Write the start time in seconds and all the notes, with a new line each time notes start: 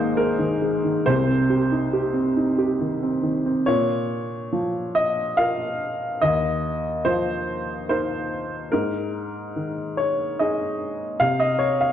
Already playing: G#1 G#2 D#3 A#3 G#4 C5 D#5
0.17 G#3 A#4
0.39 D#3
0.62 G#3
0.84 D#3
1.06 C2 C3 C5
1.27 C4
1.50 G4
1.72 D#4
1.93 G4
2.14 C4
2.37 D#4
2.58 G4
2.80 D#3
3.03 C4
3.23 D#3
3.46 C4
3.66 A#2 C#5
4.53 F3
4.95 D#5
5.37 F4 A#4 F5
6.22 D#2 D#5
7.05 F3 C5
7.89 D#4 A#4 C5
8.72 G#2 A#4
9.56 D#3
9.97 C#5
10.39 D#4 G#4 D#5
11.20 C3 F5
11.40 D#5
11.59 C#5
11.81 F5